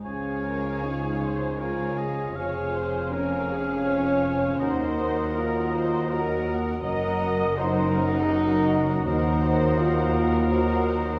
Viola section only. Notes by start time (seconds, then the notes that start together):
0.04 G#4
0.45 A#4
0.83 G#4
1.21 C5
1.59 A#4
1.97 G#4
2.35 C#5
2.74 C5
3.12 A#4
3.50 G#4
3.86 C#5
4.60 C5
5.35 A#4
5.73 C5
6.10 A#4
6.84 D#5
7.57 C5
7.95 A#4
8.31 F#4
9.06 A#4
9.40 C5
9.77 A#4